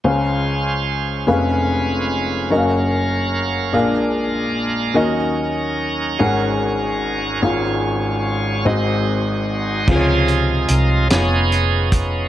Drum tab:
CC |------|------|------|------|
HH |------|------|------|------|
SD |------|------|------|------|
BD |------|------|------|------|

CC |x-----|
HH |-xxxxx|
SD |---o--|
BD |o----o|